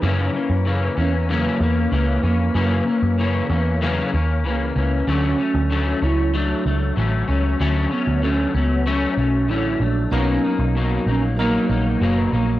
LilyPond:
<<
  \new Staff \with { instrumentName = "Soft synth lead" } { \time 4/4 \key fis \mixolydian \tempo 4 = 95 cis'4 r8 cis'8 ais4. ais8~ | ais2~ ais8 r8 ais8 cis'8~ | cis'4. e'8 d'4 r8 cis'8~ | cis'8 b8 cis'8 b8 cis'4 e'8 d'8 |
cis'4 r8 cis'8 ais4. ais8 | }
  \new Staff \with { instrumentName = "Tine electric piano" } { \time 4/4 \key fis \mixolydian r1 | r1 | r1 | r1 |
<fis ais b dis' ais'>2 <fis ais dis' ais'>2 | }
  \new Staff \with { instrumentName = "Clean electric guitar" } { \time 4/4 \key fis \mixolydian <fis, cis e ais cis'>8 <e ais cis'>8 <cis e ais cis'>8 <e ais cis'>8 <fis, cis e ais cis'>8 <e ais cis'>8 <cis e ais cis'>8 <e ais cis'>8 | <fis, cis e ais cis'>8 <e ais cis'>8 <cis e ais cis'>8 <e ais cis'>8 <fis, cis e ais cis'>8 <ais cis'>8 <cis e ais cis'>8 <e ais cis'>8 | <d fis a cis'>8 <fis a cis'>8 <d fis a cis'>8 <fis a cis'>8 <fis a>8 <fis a>8 <d fis a cis'>8 <fis a cis'>8 | <d fis a cis'>8 <fis a cis'>8 <d fis a cis'>8 <fis a cis'>8 <fis a cis'>8 <fis a cis'>8 <d fis a cis'>8 <fis a>8 |
<b, fis ais dis'>8 <fis ais dis'>8 <b, fis ais dis'>8 <fis ais dis'>8 <fis ais dis'>8 <fis ais dis'>8 <b, fis ais dis'>8 <fis ais dis'>8 | }
  \new Staff \with { instrumentName = "Picked electric bass" } { \clef bass \time 4/4 \key fis \mixolydian fis,8 r16 fis,8. e,4 e,8 cis,8 f,8 | fis,8 r16 fis,8. e,4 dis,8 cis,8 cis,8 | d,8 r16 d,8. cis,4 cis,8 a,,8 cis,8 | d,8 r16 d,8. cis,4 b,,8 a,,8 ais,,8 |
b,,8 r16 b,,8. ais,,4 ais,,8 fis,,8 ais,,8 | }
>>